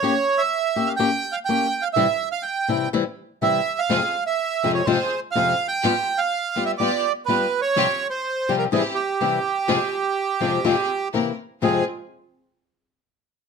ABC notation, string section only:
X:1
M:4/4
L:1/8
Q:1/4=124
K:Fm
V:1 name="String section"
z8 | z8 | [CFA] z2 [CFA] [CFA] z [CFA] z | [=B,FG] z2 [B,FG] [B,FG] z [B,FG] z |
[CFG] z2 [CFG] [C=EG] z [CEG] z | [CFA] z2 [CFA] [CFA] z [C=EB] z | [CFA] z6 z |]